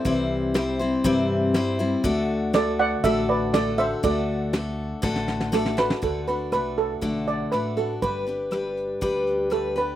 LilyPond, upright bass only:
\new Staff \with { instrumentName = "Upright bass" } { \clef bass \time 4/4 \key d \mixolydian \tempo 4 = 120 c,2 g,2 | d,2 a,,2 | d,2 a,,2 | d,4 c,4 b,,4 a,,4 |
g,,2 d,2 | }